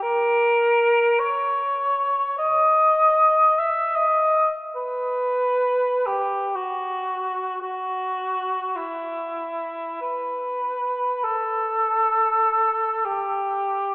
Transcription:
0.02 A#4
1.19 C#5
2.39 D#5
3.59 E5
3.96 D#5
4.76 B4
6.06 G4
6.55 F#4
7.61 F#4
8.76 E4
10.01 B4
11.24 A4
13.05 G4

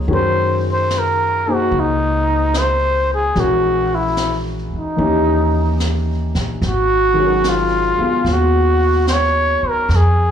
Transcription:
Already playing: F3 A#3
0.08 F#2 D#3 G#3 C#4 F#4, brush sweep
0.13 A#4 C5
0.71 C5
0.90 snare, hi-hat pedal
0.99 A#4
1.47 A#3 D#4 G#4 C5
1.53 F#4
1.72 C#2, brush sweep
1.80 D#4
2.54 snare, hi-hat pedal
2.59 C5
3.14 G#4
3.35 A#1 E3 G#3 C#4 F#4 A#4, brush sweep, snare
3.40 F#4
3.95 E4
4.17 snare, hi-hat pedal
4.73 muted upright bass stroke
4.78 D#4
4.96 D#2 E3 A#3 C#4 D#4, brush sweep
5.01 G4
5.80 snare, hi-hat pedal
6.35 A#1, snare
6.62 G#1, brush sweep, snare
6.66 F#4
7.14 D#3 G#3
7.19 F#3 C#4
7.25 A#4
7.44 snare, hi-hat pedal
7.49 F4
7.98 G#3 B3 G#4 F5, muted upright bass stroke
8.25 D#2, brush sweep, snare
8.33 F#4
9.07 C5, snare, hi-hat pedal
9.13 C#5
9.62 muted upright bass stroke
9.69 A#4
9.89 F2, brush sweep, snare
9.96 G#4

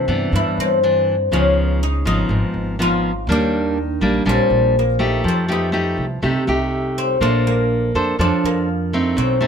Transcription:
Already playing: C3
0.08 G2 E3 B3 D4
0.32 G2 E4
0.57 G2 C4
0.83 E3 D4
1.31 C#2 C#3 F3 B3 C#4 D#4
1.83 D#4
2.05 G#1 F3 B3 D#4
2.29 G#1 G#2
2.54 G#1
2.79 F3 B3 D#4 F4
3.27 D#2 D#3 G3 A#3 D4
3.32 D4
4.01 A#1 G3 A#3 D4
4.25 A#1 A#2 G3 A#3 C4 D4
4.50 A#1
4.79 A#3
4.99 A3 D#4 G4
5.24 F2 F3
5.28 C4
5.48 A3 B3 D#4 G4
5.72 A3 D#4 G4
5.97 C2
6.22 C2 C3 A3 D#4 G4
6.47 C2 A3 D#4 G4
6.98 C4
7.21 A#1 A3 A#3 D4 A4 C5
7.47 A#3
7.94 F2 D4 A4 C5
8.19 F2 F3 D4 A4 C5
8.44 F2 A#3
8.93 A3 C4 D#4
9.17 B1 B2 C4
9.41 A3 C4 D#4

